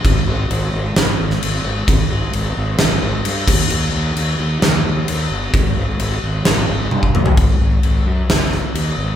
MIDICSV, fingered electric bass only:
0, 0, Header, 1, 2, 480
1, 0, Start_track
1, 0, Tempo, 458015
1, 45, Time_signature, 4, 2, 24, 8
1, 9597, End_track
2, 0, Start_track
2, 0, Title_t, "Fingered electric bass"
2, 0, Program_c, 0, 33
2, 43, Note_on_c, 0, 32, 93
2, 236, Note_off_c, 0, 32, 0
2, 282, Note_on_c, 0, 32, 92
2, 475, Note_off_c, 0, 32, 0
2, 527, Note_on_c, 0, 32, 94
2, 718, Note_off_c, 0, 32, 0
2, 767, Note_on_c, 0, 32, 90
2, 958, Note_off_c, 0, 32, 0
2, 1007, Note_on_c, 0, 32, 91
2, 1198, Note_off_c, 0, 32, 0
2, 1252, Note_on_c, 0, 32, 92
2, 1441, Note_off_c, 0, 32, 0
2, 1494, Note_on_c, 0, 32, 92
2, 1682, Note_off_c, 0, 32, 0
2, 1721, Note_on_c, 0, 32, 86
2, 1915, Note_off_c, 0, 32, 0
2, 1964, Note_on_c, 0, 32, 90
2, 2156, Note_off_c, 0, 32, 0
2, 2198, Note_on_c, 0, 32, 89
2, 2393, Note_off_c, 0, 32, 0
2, 2449, Note_on_c, 0, 32, 89
2, 2639, Note_off_c, 0, 32, 0
2, 2693, Note_on_c, 0, 32, 93
2, 2881, Note_off_c, 0, 32, 0
2, 2926, Note_on_c, 0, 32, 94
2, 3117, Note_off_c, 0, 32, 0
2, 3168, Note_on_c, 0, 32, 99
2, 3358, Note_off_c, 0, 32, 0
2, 3399, Note_on_c, 0, 43, 87
2, 3593, Note_off_c, 0, 43, 0
2, 3646, Note_on_c, 0, 39, 85
2, 3837, Note_off_c, 0, 39, 0
2, 3878, Note_on_c, 0, 39, 100
2, 4073, Note_off_c, 0, 39, 0
2, 4121, Note_on_c, 0, 39, 92
2, 4314, Note_off_c, 0, 39, 0
2, 4356, Note_on_c, 0, 39, 94
2, 4551, Note_off_c, 0, 39, 0
2, 4605, Note_on_c, 0, 39, 92
2, 4797, Note_off_c, 0, 39, 0
2, 4838, Note_on_c, 0, 39, 98
2, 5032, Note_off_c, 0, 39, 0
2, 5077, Note_on_c, 0, 39, 100
2, 5272, Note_off_c, 0, 39, 0
2, 5317, Note_on_c, 0, 39, 93
2, 5512, Note_off_c, 0, 39, 0
2, 5552, Note_on_c, 0, 31, 88
2, 5749, Note_off_c, 0, 31, 0
2, 5802, Note_on_c, 0, 32, 90
2, 5995, Note_off_c, 0, 32, 0
2, 6042, Note_on_c, 0, 32, 87
2, 6235, Note_off_c, 0, 32, 0
2, 6281, Note_on_c, 0, 32, 91
2, 6474, Note_off_c, 0, 32, 0
2, 6535, Note_on_c, 0, 32, 86
2, 6723, Note_off_c, 0, 32, 0
2, 6773, Note_on_c, 0, 32, 92
2, 6961, Note_off_c, 0, 32, 0
2, 7010, Note_on_c, 0, 32, 92
2, 7200, Note_off_c, 0, 32, 0
2, 7250, Note_on_c, 0, 43, 94
2, 7440, Note_off_c, 0, 43, 0
2, 7491, Note_on_c, 0, 32, 91
2, 7680, Note_off_c, 0, 32, 0
2, 7722, Note_on_c, 0, 32, 91
2, 7889, Note_off_c, 0, 32, 0
2, 7965, Note_on_c, 0, 32, 93
2, 8130, Note_off_c, 0, 32, 0
2, 8212, Note_on_c, 0, 32, 90
2, 8376, Note_off_c, 0, 32, 0
2, 8447, Note_on_c, 0, 42, 92
2, 8612, Note_off_c, 0, 42, 0
2, 8688, Note_on_c, 0, 30, 90
2, 9018, Note_off_c, 0, 30, 0
2, 9163, Note_on_c, 0, 39, 97
2, 9330, Note_off_c, 0, 39, 0
2, 9400, Note_on_c, 0, 32, 92
2, 9568, Note_off_c, 0, 32, 0
2, 9597, End_track
0, 0, End_of_file